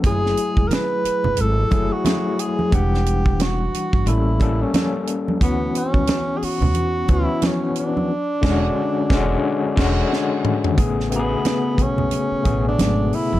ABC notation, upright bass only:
X:1
M:4/4
L:1/16
Q:"Swing 16ths" 1/4=89
K:A
V:1 name="Upright bass" clef=bass
F,,,2 z E,,, z3 F,,, G,,,2 F,,, z4 z | E,,,6 z =G,,, A,,,4 z4 | D,,2 z C,, z3 D,, E,,2 D,, z4 z | z2 E,,,2 z2 E,,,2 z2 E,,,2 z4 |
A,,,4 z2 B,,,2 z2 A,,,2 G,,,2 z F,,, |]